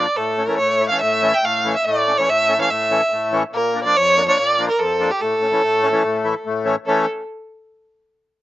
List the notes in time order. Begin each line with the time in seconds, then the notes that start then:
Already playing: D5
0.16 A2 A4
0.38 A3 C#4
0.48 E3 A3 C#4 A#4
0.58 A2 C#5
0.79 A3 E4
0.89 E3 A3 C#4 F5
1.01 A2 E5
1.22 E3 A3 C#4
1.34 G5
1.43 A2 F5
1.64 E3 A3 C#4
1.76 E5
1.85 A2 D5
2.07 A3 C#4
2.18 E3 A3 C#4 C#5
2.28 A2 E5
2.49 A3 C#4
2.58 E3 A3 C#4 F5
2.70 A2 E5
2.91 E3 A3 C#4
3.12 A2
3.32 E3 A3 C#4
3.53 A#2 A#4
3.74 A#3 D4
3.84 F3 A#3 D4 D5
3.97 F2 C#5
4.17 A#3 D4
4.27 F3 A#3 D4 C#5
4.38 A#2 D5
4.59 F3 A#3 D4
4.69 A#4
4.79 F2 A4
5.00 F3 A#3 D4
5.11 G4
5.22 A2 A4
5.42 A3 C#4
5.52 E3 A3 C#4
5.63 A2
5.82 A3 C#4
5.92 E3 A3 C#4
6.03 A2
6.24 E3 A3 E4
6.46 A2
6.65 E3 A3 C#4
6.86 E3 A3 C#4 A4